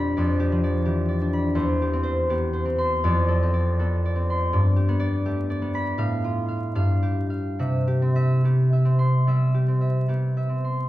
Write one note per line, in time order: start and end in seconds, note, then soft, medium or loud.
0.00 0.16 F2 medium
0.00 1.20 D4 medium
0.00 0.38 G4 medium
0.00 0.16 D5 medium
0.00 2.44 G5 medium
0.00 1.32 B5 medium
0.17 1.60 F2 medium
0.17 0.63 D5 medium
0.40 0.84 G4 medium
0.52 1.60 F3 medium
0.64 1.07 D5 medium
0.85 1.46 E3 soft
0.85 1.81 G4 medium
1.08 1.59 D5 medium
1.21 1.60 D4 medium
1.33 1.60 B5 medium
1.55 3.05 E2 medium
1.55 2.02 C5 medium
1.82 2.29 G4 medium
1.93 2.64 C4 medium
2.03 2.52 C5 medium
2.29 2.92 B3 medium
2.29 3.07 G4 medium
2.53 4.53 C5 medium
2.65 3.41 C4 medium
2.78 4.29 C6 medium
3.04 4.54 F2 medium
3.04 3.52 D5 medium
3.28 3.78 A4 medium
3.43 4.14 C4 medium
3.53 4.04 D5 medium
3.79 4.41 B3 medium
3.79 4.55 A4 medium
4.06 4.52 D5 medium
4.15 4.54 C4 medium
4.30 4.55 C6 medium
4.53 6.01 G2 medium
4.53 4.98 D5 medium
4.76 5.24 G4 medium
4.88 5.61 B3 medium
5.00 5.49 D5 medium
5.25 5.87 A3 medium
5.25 6.01 G4 medium
5.50 6.01 D5 medium
5.62 6.01 B3 medium
5.75 6.01 B5 medium
5.98 6.79 A2 medium
5.98 6.47 F5 medium
6.24 7.64 F4 medium
6.48 6.74 F5 medium
6.75 7.63 G2 medium
6.75 7.29 F5 medium
7.03 7.86 G4 medium
7.30 7.63 F5 medium
7.59 10.89 C3 medium
7.59 8.14 E5 medium
7.88 8.44 G4 medium
8.02 8.84 C4 medium
8.16 8.71 E5 medium
8.44 9.15 B3 soft
8.44 9.53 G4 medium
8.73 9.27 E5 medium
8.85 9.67 C4 medium
8.99 10.63 C6 medium
9.27 10.89 G3 medium
9.27 9.80 E5 medium
9.54 10.08 G4 medium
9.68 10.48 C4 soft
9.81 10.36 E5 medium
10.08 10.79 B3 soft
10.08 10.89 G4 medium
10.37 10.89 E5 medium
10.49 10.89 C4 soft
10.64 10.89 C6 soft